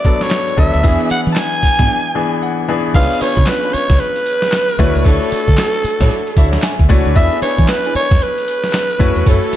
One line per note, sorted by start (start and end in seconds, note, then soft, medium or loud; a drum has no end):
0.00 0.05 F#3 medium
0.00 0.05 B3 medium
0.00 0.05 D4 medium
0.00 0.06 A4 loud
0.00 0.23 D5 loud
0.05 0.52 F#3 medium
0.05 0.52 B3 medium
0.05 0.52 D4 medium
0.05 0.53 A4 medium
0.05 kick medium
0.05 closed hi-hat medium
0.21 0.58 C#5 medium
0.21 snare medium
0.21 closed hi-hat medium
0.30 snare loud
0.30 clap medium
0.30 closed hi-hat medium
0.48 closed hi-hat medium
0.57 0.70 D2 medium
0.57 0.81 F#3 medium
0.57 0.81 B3 medium
0.57 0.81 D4 medium
0.57 0.81 A4 medium
0.57 1.08 E5 loud
0.57 kick loud
0.57 closed hi-hat medium
0.74 0.82 D2 medium
0.74 closed hi-hat medium
0.83 0.96 E2 loud
0.83 1.77 E3 medium
0.83 1.77 B3 medium
0.83 1.09 B3 loud
0.83 1.77 D4 medium
0.83 1.09 D4 medium
0.83 1.09 E4 medium
0.83 1.78 G#4 medium
0.83 1.09 G#4 loud
0.83 kick loud
0.83 closed hi-hat medium
0.83 tambourine medium
1.00 closed hi-hat soft
1.10 1.20 F#5 loud
1.10 muted fingered electric bass stroke soft
1.10 closed hi-hat medium
1.10 tambourine medium
1.27 1.34 E3 medium
1.27 closed hi-hat medium
1.32 1.39 A5 medium
1.32 clap medium
1.36 2.43 G#5 loud
1.36 snare loud
1.36 closed hi-hat medium
1.36 tambourine medium
1.53 closed hi-hat medium
1.63 muted fingered electric bass stroke soft
1.63 kick medium
1.63 open hi-hat medium
1.63 tambourine medium
1.79 1.87 G#2 medium
1.79 1.89 B3 medium
1.79 1.89 D4 medium
1.79 1.89 E4 medium
1.79 1.90 G#4 medium
1.79 kick medium
1.79 snare medium
1.79 closed hi-hat medium
2.15 2.62 E3 medium
2.15 2.63 B3 medium
2.15 2.63 D4 medium
2.15 2.63 G#4 medium
2.15 2.40 G#5 medium
2.43 2.91 F#5 medium
2.68 2.92 E3 medium
2.68 2.92 B3 medium
2.68 2.92 D4 medium
2.68 2.92 G#4 loud
2.94 3.06 C#2 loud
2.94 3.88 B3 medium
2.94 3.11 C#4 medium
2.94 3.11 D4 medium
2.94 3.88 D4 medium
2.94 3.11 F4 medium
2.94 3.89 G#4 medium
2.94 3.11 B4 loud
2.94 3.89 C#5 medium
2.94 3.23 F5 loud
2.94 kick loud
2.94 closed hi-hat medium
2.94 crash loud
2.94 tambourine medium
3.11 closed hi-hat soft
3.21 3.37 C#4 medium
3.21 3.37 D4 medium
3.21 3.37 F4 medium
3.21 3.37 B4 medium
3.21 3.49 C#5 loud
3.21 muted fingered electric bass stroke soft
3.21 closed hi-hat medium
3.21 tambourine medium
3.37 3.45 C#3 loud
3.37 kick loud
3.37 closed hi-hat medium
3.46 3.75 B4 loud
3.46 snare loud
3.46 clap medium
3.46 closed hi-hat medium
3.46 tambourine loud
3.63 3.73 C#4 medium
3.63 3.74 D4 medium
3.63 3.74 F4 medium
3.63 3.74 B4 medium
3.63 closed hi-hat medium
3.74 4.01 C#5 loud
3.74 muted fingered electric bass stroke medium
3.74 closed hi-hat medium
3.74 tambourine medium
3.90 3.97 C#2 loud
3.90 kick medium
3.90 snare medium
3.90 closed hi-hat medium
4.00 5.06 B4 loud
4.00 closed hi-hat medium
4.16 closed hi-hat medium
4.26 closed hi-hat medium
4.26 tambourine medium
4.42 snare medium
4.42 closed hi-hat medium
4.52 snare loud
4.52 clap loud
4.52 closed hi-hat medium
4.52 tambourine loud
4.69 closed hi-hat medium
4.79 4.91 D2 loud
4.79 5.72 A3 loud
4.79 5.72 D4 medium
4.79 5.72 E4 medium
4.79 5.72 F#4 medium
4.79 5.73 C#5 loud
4.79 kick loud
4.79 closed hi-hat medium
4.79 tambourine medium
4.95 5.03 C#2 medium
4.95 closed hi-hat medium
5.05 5.17 D2 loud
5.05 5.30 D4 medium
5.05 5.30 E4 medium
5.05 5.30 F#4 medium
5.05 6.89 A4 loud
5.05 5.30 C#5 loud
5.05 kick loud
5.05 closed hi-hat medium
5.05 tambourine medium
5.22 closed hi-hat soft
5.32 muted fingered electric bass stroke soft
5.32 closed hi-hat medium
5.32 tambourine medium
5.48 5.55 D3 loud
5.48 kick loud
5.48 closed hi-hat medium
5.57 snare loud
5.57 clap loud
5.57 closed hi-hat medium
5.57 tambourine loud
5.75 closed hi-hat medium
5.84 muted fingered electric bass stroke soft
5.84 closed hi-hat medium
5.84 tambourine medium
6.00 6.08 A2 medium
6.00 6.11 D4 medium
6.00 6.11 E4 medium
6.00 6.11 F#4 medium
6.00 6.11 C#5 medium
6.00 kick medium
6.00 snare medium
6.00 closed hi-hat medium
6.11 closed hi-hat medium
6.27 closed hi-hat medium
6.36 6.56 D2 loud
6.36 6.53 D4 medium
6.36 6.53 E4 medium
6.36 6.53 F#4 medium
6.36 6.53 C#5 medium
6.36 6.62 E5 medium
6.36 kick loud
6.36 closed hi-hat medium
6.36 tambourine medium
6.53 snare medium
6.53 closed hi-hat medium
6.62 7.12 G#5 medium
6.62 snare loud
6.62 clap medium
6.62 closed hi-hat medium
6.62 tambourine loud
6.79 6.87 D2 medium
6.79 kick medium
6.79 closed hi-hat medium
6.89 7.01 C#2 medium
6.89 7.13 A3 medium
6.89 7.13 D4 medium
6.89 7.06 D4 medium
6.89 7.13 E4 medium
6.89 7.06 E4 medium
6.89 7.13 F#4 medium
6.89 7.06 F#4 medium
6.89 7.13 C#5 loud
6.89 7.06 C#5 medium
6.89 kick loud
6.89 closed hi-hat medium
6.89 tambourine medium
7.05 7.13 D2 medium
7.05 closed hi-hat medium
7.15 7.28 E2 loud
7.15 8.08 B3 medium
7.15 8.09 D4 medium
7.15 7.32 D4 medium
7.15 8.09 E4 medium
7.15 7.32 E4 medium
7.15 8.09 G#4 medium
7.15 7.32 G#4 medium
7.15 7.32 B4 loud
7.15 8.09 D5 medium
7.15 7.41 E5 loud
7.15 kick loud
7.15 closed hi-hat medium
7.15 tambourine medium
7.32 closed hi-hat medium
7.42 7.58 D4 medium
7.42 7.59 E4 medium
7.42 7.59 G#4 medium
7.42 7.59 B4 medium
7.42 7.70 C#5 loud
7.42 muted fingered electric bass stroke soft
7.42 closed hi-hat medium
7.42 tambourine medium
7.58 7.66 E3 medium
7.58 kick loud
7.58 closed hi-hat medium
7.68 7.95 B4 loud
7.68 snare loud
7.68 clap medium
7.68 closed hi-hat medium
7.68 tambourine loud
7.85 7.95 D4 medium
7.85 7.95 E4 medium
7.85 7.95 G#4 medium
7.85 7.95 B4 medium
7.85 closed hi-hat medium
7.95 8.24 C#5 loud
7.95 muted fingered electric bass stroke soft
7.95 closed hi-hat medium
7.95 tambourine medium
8.11 8.19 E2 loud
8.11 kick loud
8.11 snare medium
8.11 closed hi-hat medium
8.22 9.29 B4 loud
8.22 closed hi-hat medium
8.38 closed hi-hat medium
8.48 closed hi-hat medium
8.48 tambourine medium
8.64 snare medium
8.64 closed hi-hat medium
8.73 snare loud
8.73 clap medium
8.73 closed hi-hat medium
8.73 tambourine loud
8.90 closed hi-hat medium
8.99 9.12 F#2 loud
8.99 9.56 A3 medium
8.99 9.56 C#4 medium
8.99 9.56 E4 medium
8.99 9.56 F#4 medium
8.99 9.56 C#5 loud
8.99 kick medium
8.99 closed hi-hat medium
8.99 tambourine medium
9.16 9.23 E2 loud
9.16 closed hi-hat medium
9.26 9.38 F#2 loud
9.26 9.51 E4 medium
9.26 9.51 F#4 medium
9.26 9.51 A4 medium
9.26 9.56 A4 loud
9.26 9.51 C#5 loud
9.26 kick loud
9.26 closed hi-hat medium
9.26 tambourine medium
9.43 closed hi-hat soft
9.53 muted fingered electric bass stroke soft
9.53 closed hi-hat medium
9.53 tambourine medium